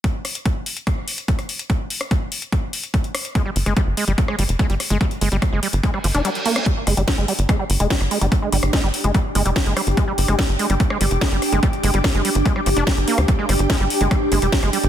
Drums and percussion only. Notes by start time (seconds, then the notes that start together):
0.04 kick, closed hi-hat
0.25 cross-stick, open hi-hat
0.35 closed hi-hat
0.46 kick, closed hi-hat
0.66 open hi-hat
0.77 closed hi-hat
0.87 kick, cross-stick, closed hi-hat
1.08 open hi-hat
1.18 closed hi-hat
1.28 kick, closed hi-hat
1.39 cross-stick, closed hi-hat
1.49 open hi-hat
1.59 closed hi-hat
1.70 kick, closed hi-hat
1.90 open hi-hat
2.01 cross-stick, closed hi-hat
2.11 kick, closed hi-hat
2.32 open hi-hat
2.42 closed hi-hat
2.52 kick, cross-stick, closed hi-hat
2.73 open hi-hat
2.84 closed hi-hat
2.94 kick, closed hi-hat
3.04 closed hi-hat
3.15 cross-stick, open hi-hat
3.25 closed hi-hat
3.35 kick, closed hi-hat
3.56 open hi-hat
3.66 cross-stick, closed hi-hat
3.77 kick, closed hi-hat
3.97 open hi-hat
4.08 closed hi-hat
4.18 kick, closed hi-hat
4.28 cross-stick
4.39 open hi-hat
4.49 closed hi-hat
4.59 kick, closed hi-hat
4.70 closed hi-hat
4.80 cross-stick, open hi-hat
4.90 closed hi-hat
5.01 kick, closed hi-hat
5.11 closed hi-hat
5.21 open hi-hat
5.32 closed hi-hat
5.42 kick, cross-stick, closed hi-hat
5.63 open hi-hat
5.73 closed hi-hat
5.83 kick, closed hi-hat
5.94 cross-stick
6.04 open hi-hat
6.15 closed hi-hat
6.25 closed hi-hat
6.35 closed hi-hat
6.46 open hi-hat
6.56 cross-stick, closed hi-hat
6.66 kick, closed hi-hat
6.87 cross-stick, open hi-hat
6.97 closed hi-hat
7.08 kick, snare, closed hi-hat
7.28 open hi-hat
7.39 closed hi-hat
7.49 kick, cross-stick, closed hi-hat
7.70 open hi-hat
7.80 closed hi-hat
7.90 kick, snare, closed hi-hat
8.01 cross-stick, closed hi-hat
8.11 open hi-hat
8.21 closed hi-hat
8.32 kick, closed hi-hat
8.52 open hi-hat
8.63 cross-stick, closed hi-hat
8.73 kick, snare, closed hi-hat
8.94 open hi-hat
9.04 closed hi-hat
9.15 kick, cross-stick, closed hi-hat
9.35 open hi-hat
9.46 closed hi-hat
9.56 kick, snare, closed hi-hat
9.66 closed hi-hat
9.77 cross-stick, open hi-hat
9.87 closed hi-hat
9.97 kick, closed hi-hat
10.18 open hi-hat
10.28 cross-stick, closed hi-hat
10.39 kick, snare, closed hi-hat
10.59 open hi-hat
10.70 closed hi-hat
10.80 kick, closed hi-hat
10.90 cross-stick
11.01 open hi-hat
11.11 closed hi-hat
11.21 kick, snare, closed hi-hat
11.32 closed hi-hat
11.42 cross-stick, open hi-hat
11.52 closed hi-hat
11.63 kick, closed hi-hat
11.73 closed hi-hat
11.83 open hi-hat
11.94 closed hi-hat
12.04 kick, cross-stick, snare, closed hi-hat
12.14 closed hi-hat
12.25 open hi-hat
12.35 closed hi-hat
12.46 kick, closed hi-hat
12.56 cross-stick
12.66 open hi-hat
12.77 closed hi-hat
12.87 kick, snare, closed hi-hat
12.97 closed hi-hat
13.08 open hi-hat
13.18 cross-stick, closed hi-hat
13.28 kick, closed hi-hat
13.49 cross-stick, open hi-hat
13.59 closed hi-hat
13.70 kick, snare, closed hi-hat
13.90 open hi-hat
14.01 closed hi-hat
14.11 kick, cross-stick, closed hi-hat
14.32 open hi-hat
14.42 closed hi-hat
14.52 kick, snare, closed hi-hat
14.63 cross-stick, closed hi-hat
14.73 open hi-hat
14.84 closed hi-hat